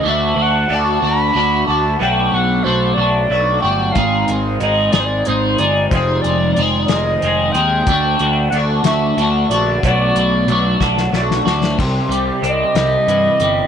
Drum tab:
CC |------------|------------|------------|------------|
HH |------------|------------|x-x-x-x-x-x-|x-x-x-x-x-x-|
SD |------------|------------|------o-----|------o-----|
BD |------------|------------|o-----------|o-----------|

CC |------------|------------|x-----------|
HH |x-x-x-x-x-x-|x-x-x-------|--x-x-x-x-x-|
SD |------o-----|------oooooo|------o-----|
BD |o-----------|o-----o-----|o-----------|